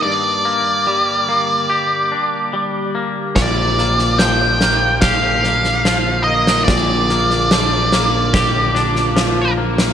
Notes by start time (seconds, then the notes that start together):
Already playing: A#3 G4
0.03 G2 D3 G4 D5
0.45 A#3
0.87 G3
1.29 A#3
1.70 G4
2.12 D4
2.53 G3
2.95 A#3
3.36 A#1 A#2 D3 D5, kick, snare
3.78 A#3, snare
3.99 snare
4.19 F3 G5, snare
4.61 A#3, snare
5.01 G4 F5, kick, snare
5.44 snare
5.64 snare
5.85 F3, snare
6.24 A#3 D#5
6.47 snare
6.64 A#1 D5, kick, snare
6.69 A#2 F4
7.09 A#3, snare
7.30 snare
7.51 F3, snare
7.92 A#3, snare
8.34 G4, kick, snare
8.75 D4, snare
8.96 snare
9.16 F3, snare
9.57 A#3
9.78 snare